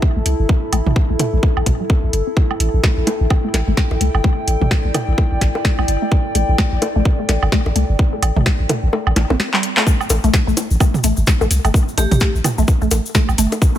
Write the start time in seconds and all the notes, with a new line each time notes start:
Already playing: E4 A4 E5 A5
0.02 kick
0.16 A1 A3
0.26 C2, closed hi-hat
0.40 G1
0.49 A3, kick
0.72 A1 A3, closed hi-hat, high woodblock
0.86 A1, mid tom
0.96 kick
1.10 A1 A3
1.19 closed hi-hat, mid tom, low bongo
1.33 A1 A3
1.43 kick
1.57 A1, high woodblock
1.66 A1 E3, kick, closed hi-hat, mid tom
1.80 G3
1.90 C4, kick
2.04 A1
2.13 G1, closed hi-hat
2.27 C4
2.37 kick
2.50 A3 G5, high woodblock
2.60 A1, closed hi-hat
2.74 A1
2.83 A3, kick, snare
2.97 A1
3.07 A3, closed hi-hat, high bongo, low bongo
3.21 A1
3.30 kick, high woodblock
3.44 A3
3.54 A1, snare, closed hi-hat, high bongo
3.68 G1 A3
3.77 kick, snare
3.91 A1, high bongo
4.01 C2 A3, closed hi-hat
4.14 G1, high woodblock
4.21 A3 D5, kick
4.47 A1, closed hi-hat
4.61 A1 A3, mid tom
4.71 kick, snare
4.85 A1 A3
4.94 closed hi-hat, mid tom, high bongo, low bongo, high woodblock
5.08 A1
5.18 A3, kick, high bongo
5.32 A1
5.41 A1 A3, kick, snare, closed hi-hat
5.55 high bongo
5.65 kick, snare
5.78 A1 A3, high woodblock
5.88 G1, closed hi-hat
6.02 A3
6.12 kick
6.35 A1 A3, closed hi-hat
6.49 A1
6.58 A3, kick, snare, high woodblock
6.72 A1
6.82 closed hi-hat, high bongo, low bongo
6.96 A1 A3
7.05 kick
7.19 A3
7.29 A1, snare, closed hi-hat, high bongo
7.43 G1, high woodblock
7.52 A3, kick, snare
7.66 A1, high bongo
7.76 C2 A3, closed hi-hat
7.89 G1
7.99 kick
8.13 A3
8.22 A1, closed hi-hat, high woodblock
8.36 A1 A3, mid tom
8.46 kick, snare
8.60 A1
8.69 A3, closed hi-hat, mid tom, high bongo, low bongo
8.83 A1
8.93 A3, high bongo
9.07 A1, high woodblock
9.16 A1, snare, closed hi-hat, low bongo
9.30 A1 C4, high bongo, low bongo
9.40 snare
9.54 G3, clap
9.63 closed hi-hat
9.77 A3, clap
9.87 A3, kick, cabasa
10.01 cabasa, high woodblock
10.10 A1, closed hi-hat, high bongo, cabasa
10.24 A1 A3, closed hi-hat, cabasa
10.34 kick, snare, cabasa
10.47 A1 A3, cabasa
10.57 closed hi-hat, low bongo, cabasa
10.71 A1, cabasa
10.80 A3, kick, cabasa, high woodblock
10.94 mid tom, cabasa
11.04 A1 A3, closed hi-hat, cabasa
11.17 G1, cabasa
11.27 kick, snare, cabasa
11.41 A1 A3, high bongo, cabasa
11.51 C2, closed hi-hat, cabasa
11.65 G1 A3, closed hi-hat, cabasa, high woodblock
11.74 kick, cabasa
11.88 cabasa
11.98 A1 A3 G4, closed hi-hat, high bongo, cabasa
12.11 A1 G4, closed hi-hat, mid tom, cabasa
12.20 A3, kick, snare, cabasa
12.35 A1, cabasa
12.44 closed hi-hat, mid tom, low bongo, cabasa, high woodblock
12.58 A1 A3, cabasa
12.68 kick, cabasa
12.82 A1 A3, cabasa
12.91 A1, closed hi-hat, high bongo, cabasa
13.06 cabasa
13.15 A3, kick, snare, cabasa
13.29 A1, cabasa, high woodblock
13.38 G1 A3, closed hi-hat, cabasa
13.52 closed hi-hat, high bongo, cabasa
13.62 kick, cabasa
13.75 cabasa